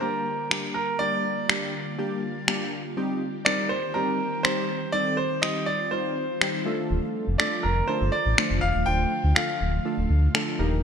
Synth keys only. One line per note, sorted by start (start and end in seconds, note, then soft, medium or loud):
0.01 0.26 G3 medium
0.01 0.27 A#3 medium
0.01 0.27 D4 medium
0.01 0.27 G4 medium
0.51 0.76 G3 medium
0.51 0.76 A#3 medium
0.51 0.76 D4 medium
0.51 0.76 G4 medium
1.00 1.25 G3 medium
1.00 1.25 A#3 medium
1.00 1.25 D4 medium
1.00 1.25 G4 medium
1.49 1.74 G3 medium
1.49 1.74 A#3 medium
1.49 1.74 D4 medium
1.49 1.74 G4 medium
1.98 2.23 G3 medium
1.98 2.23 A#3 medium
1.98 2.23 D4 medium
1.98 2.24 G4 medium
2.48 2.72 G3 medium
2.48 2.73 A#3 medium
2.48 2.73 D4 medium
2.48 2.73 G4 medium
2.97 3.22 G3 medium
2.97 3.22 C4 medium
2.97 3.22 D#4 medium
2.97 3.22 G4 loud
3.46 3.71 G3 medium
3.46 3.71 C4 medium
3.46 3.71 D#4 medium
3.46 3.71 A#4 medium
3.95 4.20 G3 medium
3.95 4.20 C4 medium
3.95 4.20 D#4 medium
3.95 4.20 G4 medium
4.44 4.69 G3 medium
4.44 4.69 C4 medium
4.44 4.69 D#4 medium
4.44 4.69 G4 medium
4.93 5.18 G3 medium
4.93 5.18 C4 medium
4.93 5.19 D#4 medium
4.93 5.19 A4 medium
5.43 5.67 G3 medium
5.43 5.68 C4 medium
5.43 5.68 D#4 medium
5.43 5.68 G4 medium
5.92 6.17 G3 medium
5.92 6.17 C4 medium
5.92 6.17 D#4 medium
5.92 6.17 F4 medium
6.41 6.66 G3 medium
6.41 6.66 C4 medium
6.41 6.66 D#4 medium
6.41 6.66 G4 medium
6.66 7.25 A3 medium
6.66 7.25 D4 medium
6.66 7.25 F4 medium
6.66 7.25 A4 loud
7.39 7.64 A3 medium
7.39 7.64 D4 medium
7.39 7.64 F4 medium
7.39 7.65 A4 medium
7.89 8.13 A3 medium
7.89 8.14 D4 medium
7.89 8.14 F4 medium
7.89 8.14 A4 medium
8.38 8.63 A3 medium
8.38 8.63 D4 medium
8.38 8.63 F4 medium
8.38 8.63 C5 medium
8.87 9.12 A3 medium
8.87 9.12 D4 medium
8.87 9.12 F4 medium
8.87 9.12 C5 medium
9.36 9.61 A3 medium
9.36 9.61 D4 medium
9.36 9.61 F4 medium
9.36 9.61 A4 medium
9.85 10.10 A3 medium
9.85 10.10 D4 medium
9.85 10.10 F4 medium
9.85 10.10 A4 medium
10.34 10.59 A3 medium
10.34 10.59 D4 medium
10.34 10.59 F4 medium
10.34 10.59 A4 medium
10.59 10.83 A#3 medium
10.59 10.83 D#4 medium
10.59 10.83 G4 medium
10.59 10.83 A#4 loud